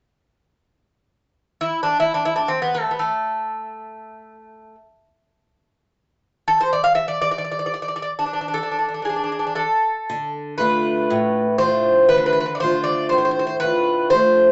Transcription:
1.61 bouzouki E4
1.83 bouzouki D4
2.00 bouzouki E4
2.14 bouzouki D4
2.25 bouzouki E4
2.36 bouzouki D4
2.48 bouzouki C4
2.62 bouzouki B3
2.74 bouzouki A3
2.91 bouzouki B3
2.99 bouzouki A3
6.48 bouzouki A4
6.61 bouzouki C5
6.73 bouzouki D5
6.84 bouzouki F5
6.95 bouzouki E5
7.08 bouzouki D5
7.22 bouzouki D5
7.31 bouzouki D5
7.38 bouzouki D5
7.45 bouzouki D5
7.52 bouzouki D5
7.59 bouzouki D5
7.66 bouzouki D5
7.74 bouzouki D5
7.82 bouzouki D5
7.88 bouzouki D5
7.96 bouzouki D5
8.02 bouzouki D5
8.19 bouzouki D4
8.26 bouzouki D4
8.33 bouzouki D4
8.41 bouzouki D4
8.48 bouzouki D4
8.54 bouzouki D4 A4
8.63 bouzouki D4
8.71 bouzouki D4
8.79 bouzouki D4
8.89 bouzouki D4
8.94 bouzouki D4
9.02 bouzouki D4 G#4
9.09 bouzouki D4
9.16 bouzouki D4
9.24 bouzouki D4
9.32 bouzouki D4
9.39 bouzouki D4
9.47 bouzouki D4
9.55 bouzouki D4 A4
10.10 steel-string acoustic guitar D3
10.58 steel-string acoustic guitar A3 D4 F4, bouzouki B4
11.10 steel-string acoustic guitar A2
11.58 steel-string acoustic guitar A3 D4 F4, bouzouki C5
12.09 steel-string acoustic guitar D3, bouzouki B4
12.18 bouzouki B4
12.26 bouzouki B4
12.33 bouzouki B4
12.40 bouzouki B4
12.46 bouzouki B4
12.55 bouzouki D5
12.60 steel-string acoustic guitar A3 D4 F4, bouzouki C5
12.84 bouzouki D5
13.09 steel-string acoustic guitar A2, bouzouki C5
13.18 bouzouki C5
13.25 bouzouki C5
13.31 bouzouki C5
13.39 bouzouki C5
13.47 bouzouki C5
13.60 steel-string acoustic guitar A3 D4, bouzouki B4
13.64 steel-string acoustic guitar F4
14.10 steel-string acoustic guitar A3, bouzouki C5
14.14 steel-string acoustic guitar D4 F4

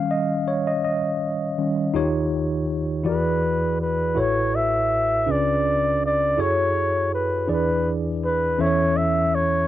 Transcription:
Already playing: tine electric piano D#3 G3 C#4 F5
0.11 tine electric piano D#5
0.48 tine electric piano C#5
0.67 tine electric piano D#5
0.84 tine electric piano D#5
1.58 tine electric piano D#3 G3 C#4
1.94 tine electric piano D#2 D#3 D#4 F4 G4 C#5
3.04 tine electric piano E2 E3 E4 F#4 G4 D5
3.08 tine electric piano G#4, flugelhorn B4
3.81 flugelhorn B4
4.15 tine electric piano A1 A2 E4 F#4 A4 B4 C#5
4.20 flugelhorn C#5
4.55 flugelhorn E5
5.26 tine electric piano C#2 C#3 C#4 D4 F4 G#4 B4
5.31 flugelhorn D5
6.05 flugelhorn D5
6.37 tine electric piano F#2 E4 F#4 G#4 A4 C#5, flugelhorn C#5
7.14 flugelhorn B4
7.47 tine electric piano E2 E3 D4 E4 G#4 B4 D5, flugelhorn B4
8.25 flugelhorn B4
8.58 tine electric piano E2 E3 C#4 E4 A4 C5 E5, flugelhorn C#5
8.66 tine electric piano C#5
8.97 flugelhorn E5
9.35 flugelhorn C#5

